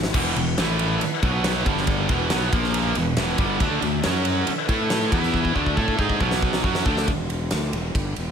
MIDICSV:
0, 0, Header, 1, 7, 480
1, 0, Start_track
1, 0, Tempo, 434153
1, 153, Time_signature, 4, 2, 24, 8
1, 9191, End_track
2, 0, Start_track
2, 0, Title_t, "Tonewheel organ"
2, 0, Program_c, 0, 16
2, 0, Note_on_c, 0, 73, 73
2, 120, Note_off_c, 0, 73, 0
2, 172, Note_on_c, 0, 64, 70
2, 179, Note_on_c, 0, 78, 74
2, 182, Note_on_c, 0, 71, 63
2, 629, Note_off_c, 0, 71, 0
2, 638, Note_on_c, 0, 57, 77
2, 640, Note_off_c, 0, 78, 0
2, 642, Note_on_c, 0, 71, 79
2, 1100, Note_off_c, 0, 64, 0
2, 1109, Note_off_c, 0, 57, 0
2, 1110, Note_on_c, 0, 78, 82
2, 1114, Note_on_c, 0, 64, 74
2, 1348, Note_off_c, 0, 78, 0
2, 1349, Note_off_c, 0, 71, 0
2, 1350, Note_off_c, 0, 64, 0
2, 1357, Note_on_c, 0, 66, 66
2, 1370, Note_on_c, 0, 73, 80
2, 1371, Note_on_c, 0, 59, 74
2, 1829, Note_off_c, 0, 66, 0
2, 1830, Note_on_c, 0, 62, 70
2, 1835, Note_off_c, 0, 59, 0
2, 1835, Note_off_c, 0, 73, 0
2, 1836, Note_on_c, 0, 55, 75
2, 1836, Note_on_c, 0, 69, 84
2, 2304, Note_off_c, 0, 62, 0
2, 2307, Note_off_c, 0, 55, 0
2, 2307, Note_off_c, 0, 69, 0
2, 2338, Note_on_c, 0, 52, 75
2, 2341, Note_on_c, 0, 59, 63
2, 2341, Note_on_c, 0, 66, 75
2, 2783, Note_on_c, 0, 72, 80
2, 2795, Note_on_c, 0, 65, 66
2, 2799, Note_off_c, 0, 52, 0
2, 2800, Note_off_c, 0, 59, 0
2, 2800, Note_off_c, 0, 66, 0
2, 2806, Note_on_c, 0, 58, 76
2, 3261, Note_off_c, 0, 72, 0
2, 3267, Note_off_c, 0, 65, 0
2, 3272, Note_off_c, 0, 58, 0
2, 3278, Note_on_c, 0, 71, 65
2, 3287, Note_on_c, 0, 78, 84
2, 3302, Note_on_c, 0, 64, 73
2, 3960, Note_on_c, 0, 69, 63
2, 3971, Note_on_c, 0, 62, 68
2, 3978, Note_on_c, 0, 76, 79
2, 3985, Note_off_c, 0, 71, 0
2, 3990, Note_off_c, 0, 78, 0
2, 3997, Note_off_c, 0, 64, 0
2, 4434, Note_on_c, 0, 68, 84
2, 4439, Note_on_c, 0, 61, 65
2, 4441, Note_on_c, 0, 54, 74
2, 4448, Note_off_c, 0, 69, 0
2, 4454, Note_off_c, 0, 62, 0
2, 4457, Note_off_c, 0, 76, 0
2, 4925, Note_off_c, 0, 68, 0
2, 4926, Note_on_c, 0, 76, 85
2, 4928, Note_off_c, 0, 61, 0
2, 4929, Note_off_c, 0, 54, 0
2, 4933, Note_on_c, 0, 62, 76
2, 4934, Note_on_c, 0, 69, 69
2, 5146, Note_on_c, 0, 57, 72
2, 5151, Note_on_c, 0, 71, 86
2, 5157, Note_on_c, 0, 64, 66
2, 5173, Note_off_c, 0, 76, 0
2, 5177, Note_off_c, 0, 62, 0
2, 5178, Note_off_c, 0, 69, 0
2, 5641, Note_off_c, 0, 57, 0
2, 5642, Note_on_c, 0, 78, 80
2, 6118, Note_off_c, 0, 71, 0
2, 6122, Note_off_c, 0, 64, 0
2, 6129, Note_off_c, 0, 78, 0
2, 6136, Note_on_c, 0, 76, 88
2, 6143, Note_on_c, 0, 62, 75
2, 6143, Note_on_c, 0, 69, 66
2, 6854, Note_off_c, 0, 76, 0
2, 6857, Note_off_c, 0, 62, 0
2, 6857, Note_off_c, 0, 69, 0
2, 6866, Note_on_c, 0, 59, 73
2, 6869, Note_on_c, 0, 66, 70
2, 6873, Note_on_c, 0, 73, 80
2, 7342, Note_off_c, 0, 59, 0
2, 7343, Note_off_c, 0, 66, 0
2, 7346, Note_off_c, 0, 73, 0
2, 7349, Note_on_c, 0, 69, 61
2, 7349, Note_on_c, 0, 76, 81
2, 7376, Note_on_c, 0, 62, 66
2, 7824, Note_off_c, 0, 69, 0
2, 7824, Note_off_c, 0, 76, 0
2, 7838, Note_off_c, 0, 62, 0
2, 9191, End_track
3, 0, Start_track
3, 0, Title_t, "Distorted electric guitar"
3, 0, Program_c, 1, 30
3, 144, Note_on_c, 1, 40, 86
3, 146, Note_on_c, 1, 47, 95
3, 158, Note_on_c, 1, 52, 87
3, 373, Note_off_c, 1, 40, 0
3, 375, Note_off_c, 1, 47, 0
3, 386, Note_on_c, 1, 40, 66
3, 388, Note_off_c, 1, 52, 0
3, 388, Note_on_c, 1, 47, 77
3, 581, Note_off_c, 1, 40, 0
3, 582, Note_off_c, 1, 47, 0
3, 640, Note_on_c, 1, 52, 95
3, 642, Note_on_c, 1, 45, 91
3, 651, Note_on_c, 1, 57, 95
3, 1108, Note_off_c, 1, 52, 0
3, 1109, Note_off_c, 1, 45, 0
3, 1113, Note_off_c, 1, 57, 0
3, 1355, Note_on_c, 1, 47, 91
3, 1359, Note_on_c, 1, 54, 91
3, 1368, Note_on_c, 1, 59, 110
3, 1825, Note_off_c, 1, 47, 0
3, 1827, Note_off_c, 1, 54, 0
3, 1832, Note_off_c, 1, 59, 0
3, 1837, Note_on_c, 1, 43, 97
3, 1839, Note_on_c, 1, 50, 93
3, 1848, Note_on_c, 1, 55, 106
3, 2294, Note_off_c, 1, 43, 0
3, 2299, Note_on_c, 1, 40, 100
3, 2306, Note_off_c, 1, 50, 0
3, 2311, Note_off_c, 1, 55, 0
3, 2312, Note_on_c, 1, 47, 97
3, 2318, Note_on_c, 1, 52, 102
3, 2530, Note_off_c, 1, 47, 0
3, 2537, Note_off_c, 1, 40, 0
3, 2543, Note_on_c, 1, 47, 97
3, 2546, Note_off_c, 1, 52, 0
3, 2551, Note_on_c, 1, 54, 91
3, 2559, Note_on_c, 1, 59, 109
3, 2783, Note_off_c, 1, 47, 0
3, 2783, Note_on_c, 1, 46, 94
3, 2788, Note_off_c, 1, 54, 0
3, 2788, Note_on_c, 1, 53, 102
3, 2795, Note_off_c, 1, 59, 0
3, 2795, Note_on_c, 1, 58, 99
3, 3258, Note_off_c, 1, 46, 0
3, 3261, Note_off_c, 1, 53, 0
3, 3263, Note_on_c, 1, 47, 78
3, 3264, Note_off_c, 1, 58, 0
3, 3268, Note_on_c, 1, 40, 66
3, 3457, Note_off_c, 1, 47, 0
3, 3460, Note_off_c, 1, 40, 0
3, 3503, Note_on_c, 1, 40, 90
3, 3517, Note_on_c, 1, 47, 95
3, 3526, Note_on_c, 1, 52, 97
3, 3729, Note_off_c, 1, 40, 0
3, 3734, Note_on_c, 1, 43, 96
3, 3738, Note_off_c, 1, 47, 0
3, 3743, Note_on_c, 1, 50, 94
3, 3745, Note_off_c, 1, 52, 0
3, 3749, Note_on_c, 1, 55, 107
3, 3965, Note_off_c, 1, 50, 0
3, 3973, Note_off_c, 1, 43, 0
3, 3979, Note_on_c, 1, 50, 98
3, 3981, Note_off_c, 1, 55, 0
3, 3987, Note_on_c, 1, 57, 96
3, 3995, Note_on_c, 1, 62, 104
3, 4201, Note_off_c, 1, 50, 0
3, 4206, Note_off_c, 1, 57, 0
3, 4215, Note_on_c, 1, 50, 70
3, 4219, Note_on_c, 1, 57, 80
3, 4224, Note_off_c, 1, 62, 0
3, 4413, Note_off_c, 1, 50, 0
3, 4415, Note_off_c, 1, 57, 0
3, 4448, Note_on_c, 1, 54, 101
3, 4457, Note_on_c, 1, 61, 97
3, 4459, Note_on_c, 1, 66, 101
3, 4930, Note_off_c, 1, 54, 0
3, 4935, Note_off_c, 1, 61, 0
3, 4935, Note_off_c, 1, 66, 0
3, 5182, Note_on_c, 1, 57, 92
3, 5194, Note_on_c, 1, 64, 95
3, 5201, Note_on_c, 1, 69, 106
3, 5649, Note_on_c, 1, 52, 93
3, 5652, Note_off_c, 1, 57, 0
3, 5653, Note_off_c, 1, 64, 0
3, 5657, Note_on_c, 1, 59, 112
3, 5666, Note_off_c, 1, 69, 0
3, 5667, Note_on_c, 1, 64, 102
3, 6122, Note_off_c, 1, 52, 0
3, 6127, Note_on_c, 1, 50, 97
3, 6134, Note_off_c, 1, 59, 0
3, 6138, Note_off_c, 1, 64, 0
3, 6141, Note_on_c, 1, 57, 98
3, 6143, Note_on_c, 1, 62, 102
3, 6357, Note_off_c, 1, 57, 0
3, 6369, Note_off_c, 1, 50, 0
3, 6370, Note_on_c, 1, 57, 82
3, 6377, Note_off_c, 1, 62, 0
3, 6383, Note_on_c, 1, 64, 92
3, 6392, Note_on_c, 1, 69, 90
3, 6611, Note_off_c, 1, 57, 0
3, 6617, Note_off_c, 1, 64, 0
3, 6622, Note_off_c, 1, 69, 0
3, 6628, Note_on_c, 1, 56, 82
3, 6630, Note_on_c, 1, 63, 90
3, 6632, Note_on_c, 1, 68, 92
3, 6860, Note_off_c, 1, 56, 0
3, 6861, Note_off_c, 1, 63, 0
3, 6862, Note_off_c, 1, 68, 0
3, 6871, Note_on_c, 1, 47, 93
3, 6877, Note_on_c, 1, 54, 107
3, 6880, Note_on_c, 1, 59, 104
3, 7333, Note_off_c, 1, 54, 0
3, 7342, Note_off_c, 1, 47, 0
3, 7346, Note_on_c, 1, 54, 91
3, 7347, Note_off_c, 1, 59, 0
3, 7350, Note_on_c, 1, 61, 89
3, 7367, Note_on_c, 1, 66, 96
3, 7580, Note_off_c, 1, 54, 0
3, 7582, Note_off_c, 1, 61, 0
3, 7590, Note_off_c, 1, 66, 0
3, 7594, Note_on_c, 1, 50, 86
3, 7596, Note_on_c, 1, 57, 92
3, 7605, Note_on_c, 1, 62, 97
3, 7824, Note_off_c, 1, 50, 0
3, 7825, Note_off_c, 1, 57, 0
3, 7829, Note_off_c, 1, 62, 0
3, 9191, End_track
4, 0, Start_track
4, 0, Title_t, "Fingered electric bass"
4, 0, Program_c, 2, 33
4, 0, Note_on_c, 2, 32, 86
4, 135, Note_off_c, 2, 32, 0
4, 163, Note_on_c, 2, 28, 93
4, 381, Note_off_c, 2, 28, 0
4, 398, Note_on_c, 2, 28, 79
4, 618, Note_off_c, 2, 28, 0
4, 649, Note_on_c, 2, 33, 98
4, 1087, Note_off_c, 2, 33, 0
4, 1355, Note_on_c, 2, 35, 104
4, 1799, Note_off_c, 2, 35, 0
4, 1830, Note_on_c, 2, 31, 100
4, 2276, Note_off_c, 2, 31, 0
4, 2321, Note_on_c, 2, 28, 100
4, 2539, Note_off_c, 2, 28, 0
4, 2558, Note_on_c, 2, 35, 89
4, 2777, Note_off_c, 2, 35, 0
4, 2793, Note_on_c, 2, 34, 102
4, 3237, Note_off_c, 2, 34, 0
4, 3269, Note_on_c, 2, 28, 88
4, 3492, Note_off_c, 2, 28, 0
4, 3507, Note_on_c, 2, 28, 104
4, 3730, Note_off_c, 2, 28, 0
4, 3740, Note_on_c, 2, 31, 97
4, 3966, Note_off_c, 2, 31, 0
4, 3986, Note_on_c, 2, 38, 94
4, 4210, Note_off_c, 2, 38, 0
4, 4225, Note_on_c, 2, 38, 86
4, 4449, Note_off_c, 2, 38, 0
4, 4482, Note_on_c, 2, 42, 106
4, 4921, Note_off_c, 2, 42, 0
4, 5181, Note_on_c, 2, 45, 101
4, 5629, Note_off_c, 2, 45, 0
4, 5663, Note_on_c, 2, 40, 104
4, 6111, Note_off_c, 2, 40, 0
4, 6139, Note_on_c, 2, 38, 90
4, 6366, Note_off_c, 2, 38, 0
4, 6380, Note_on_c, 2, 45, 93
4, 6606, Note_off_c, 2, 45, 0
4, 6622, Note_on_c, 2, 44, 99
4, 6848, Note_off_c, 2, 44, 0
4, 6866, Note_on_c, 2, 35, 101
4, 7313, Note_off_c, 2, 35, 0
4, 7340, Note_on_c, 2, 42, 101
4, 7567, Note_off_c, 2, 42, 0
4, 7583, Note_on_c, 2, 38, 99
4, 7809, Note_off_c, 2, 38, 0
4, 7826, Note_on_c, 2, 28, 82
4, 8275, Note_off_c, 2, 28, 0
4, 8317, Note_on_c, 2, 38, 86
4, 8537, Note_off_c, 2, 38, 0
4, 8548, Note_on_c, 2, 28, 82
4, 8773, Note_off_c, 2, 28, 0
4, 8786, Note_on_c, 2, 31, 94
4, 9012, Note_off_c, 2, 31, 0
4, 9043, Note_on_c, 2, 28, 71
4, 9191, Note_off_c, 2, 28, 0
4, 9191, End_track
5, 0, Start_track
5, 0, Title_t, "Muted distorted electric guitar strokes"
5, 1125, Note_on_c, 9, 29, 58
5, 1235, Note_off_c, 9, 29, 0
5, 4945, Note_on_c, 9, 29, 64
5, 5056, Note_off_c, 9, 29, 0
5, 9191, End_track
6, 0, Start_track
6, 0, Title_t, "Muted fingered electric bass strokes"
6, 1127, Note_on_c, 9, 29, 44
6, 1238, Note_off_c, 9, 29, 0
6, 4960, Note_on_c, 9, 29, 42
6, 5071, Note_off_c, 9, 29, 0
6, 9191, End_track
7, 0, Start_track
7, 0, Title_t, "Drums"
7, 38, Note_on_c, 9, 38, 100
7, 148, Note_off_c, 9, 38, 0
7, 157, Note_on_c, 9, 36, 113
7, 157, Note_on_c, 9, 49, 123
7, 267, Note_off_c, 9, 36, 0
7, 267, Note_off_c, 9, 49, 0
7, 402, Note_on_c, 9, 51, 73
7, 513, Note_off_c, 9, 51, 0
7, 639, Note_on_c, 9, 51, 101
7, 640, Note_on_c, 9, 38, 118
7, 749, Note_off_c, 9, 51, 0
7, 750, Note_off_c, 9, 38, 0
7, 876, Note_on_c, 9, 51, 82
7, 986, Note_off_c, 9, 51, 0
7, 1118, Note_on_c, 9, 51, 109
7, 1228, Note_off_c, 9, 51, 0
7, 1357, Note_on_c, 9, 36, 109
7, 1357, Note_on_c, 9, 51, 70
7, 1468, Note_off_c, 9, 36, 0
7, 1468, Note_off_c, 9, 51, 0
7, 1594, Note_on_c, 9, 51, 113
7, 1595, Note_on_c, 9, 38, 115
7, 1705, Note_off_c, 9, 51, 0
7, 1706, Note_off_c, 9, 38, 0
7, 1836, Note_on_c, 9, 36, 110
7, 1838, Note_on_c, 9, 51, 76
7, 1947, Note_off_c, 9, 36, 0
7, 1949, Note_off_c, 9, 51, 0
7, 1962, Note_on_c, 9, 38, 33
7, 2067, Note_on_c, 9, 51, 110
7, 2073, Note_off_c, 9, 38, 0
7, 2073, Note_on_c, 9, 36, 116
7, 2178, Note_off_c, 9, 51, 0
7, 2183, Note_off_c, 9, 36, 0
7, 2311, Note_on_c, 9, 51, 75
7, 2313, Note_on_c, 9, 36, 108
7, 2421, Note_off_c, 9, 51, 0
7, 2424, Note_off_c, 9, 36, 0
7, 2543, Note_on_c, 9, 51, 114
7, 2544, Note_on_c, 9, 38, 124
7, 2654, Note_off_c, 9, 51, 0
7, 2655, Note_off_c, 9, 38, 0
7, 2793, Note_on_c, 9, 36, 119
7, 2795, Note_on_c, 9, 51, 97
7, 2904, Note_off_c, 9, 36, 0
7, 2906, Note_off_c, 9, 51, 0
7, 2919, Note_on_c, 9, 38, 34
7, 3029, Note_off_c, 9, 38, 0
7, 3030, Note_on_c, 9, 51, 124
7, 3141, Note_off_c, 9, 51, 0
7, 3264, Note_on_c, 9, 51, 78
7, 3375, Note_off_c, 9, 51, 0
7, 3502, Note_on_c, 9, 51, 112
7, 3503, Note_on_c, 9, 38, 113
7, 3612, Note_off_c, 9, 51, 0
7, 3613, Note_off_c, 9, 38, 0
7, 3737, Note_on_c, 9, 51, 79
7, 3742, Note_on_c, 9, 36, 111
7, 3848, Note_off_c, 9, 51, 0
7, 3853, Note_off_c, 9, 36, 0
7, 3982, Note_on_c, 9, 51, 110
7, 3984, Note_on_c, 9, 36, 112
7, 4093, Note_off_c, 9, 51, 0
7, 4094, Note_off_c, 9, 36, 0
7, 4226, Note_on_c, 9, 51, 75
7, 4337, Note_off_c, 9, 51, 0
7, 4461, Note_on_c, 9, 51, 107
7, 4462, Note_on_c, 9, 38, 117
7, 4572, Note_off_c, 9, 51, 0
7, 4573, Note_off_c, 9, 38, 0
7, 4698, Note_on_c, 9, 51, 89
7, 4808, Note_off_c, 9, 51, 0
7, 4940, Note_on_c, 9, 51, 109
7, 5051, Note_off_c, 9, 51, 0
7, 5183, Note_on_c, 9, 36, 102
7, 5184, Note_on_c, 9, 51, 74
7, 5293, Note_off_c, 9, 36, 0
7, 5295, Note_off_c, 9, 51, 0
7, 5418, Note_on_c, 9, 51, 99
7, 5419, Note_on_c, 9, 38, 120
7, 5529, Note_off_c, 9, 51, 0
7, 5530, Note_off_c, 9, 38, 0
7, 5662, Note_on_c, 9, 36, 103
7, 5666, Note_on_c, 9, 51, 77
7, 5773, Note_off_c, 9, 36, 0
7, 5776, Note_off_c, 9, 51, 0
7, 5785, Note_on_c, 9, 38, 34
7, 5896, Note_off_c, 9, 38, 0
7, 5901, Note_on_c, 9, 36, 74
7, 6012, Note_off_c, 9, 36, 0
7, 6023, Note_on_c, 9, 36, 61
7, 6134, Note_off_c, 9, 36, 0
7, 6144, Note_on_c, 9, 36, 66
7, 6254, Note_off_c, 9, 36, 0
7, 6262, Note_on_c, 9, 36, 66
7, 6373, Note_off_c, 9, 36, 0
7, 6381, Note_on_c, 9, 36, 81
7, 6491, Note_off_c, 9, 36, 0
7, 6500, Note_on_c, 9, 36, 70
7, 6611, Note_off_c, 9, 36, 0
7, 6619, Note_on_c, 9, 36, 96
7, 6729, Note_off_c, 9, 36, 0
7, 6739, Note_on_c, 9, 36, 79
7, 6849, Note_off_c, 9, 36, 0
7, 6860, Note_on_c, 9, 36, 94
7, 6971, Note_off_c, 9, 36, 0
7, 6981, Note_on_c, 9, 38, 80
7, 7091, Note_off_c, 9, 38, 0
7, 7103, Note_on_c, 9, 36, 91
7, 7214, Note_off_c, 9, 36, 0
7, 7221, Note_on_c, 9, 38, 88
7, 7332, Note_off_c, 9, 38, 0
7, 7340, Note_on_c, 9, 36, 96
7, 7451, Note_off_c, 9, 36, 0
7, 7463, Note_on_c, 9, 38, 93
7, 7573, Note_off_c, 9, 38, 0
7, 7582, Note_on_c, 9, 36, 113
7, 7692, Note_off_c, 9, 36, 0
7, 7710, Note_on_c, 9, 38, 89
7, 7821, Note_off_c, 9, 38, 0
7, 7825, Note_on_c, 9, 36, 106
7, 7825, Note_on_c, 9, 51, 97
7, 7936, Note_off_c, 9, 36, 0
7, 7936, Note_off_c, 9, 51, 0
7, 8069, Note_on_c, 9, 51, 68
7, 8179, Note_off_c, 9, 51, 0
7, 8299, Note_on_c, 9, 51, 98
7, 8301, Note_on_c, 9, 38, 109
7, 8410, Note_off_c, 9, 51, 0
7, 8411, Note_off_c, 9, 38, 0
7, 8547, Note_on_c, 9, 51, 74
7, 8657, Note_off_c, 9, 51, 0
7, 8789, Note_on_c, 9, 36, 100
7, 8793, Note_on_c, 9, 51, 93
7, 8900, Note_off_c, 9, 36, 0
7, 8903, Note_off_c, 9, 51, 0
7, 9025, Note_on_c, 9, 51, 64
7, 9136, Note_off_c, 9, 51, 0
7, 9191, End_track
0, 0, End_of_file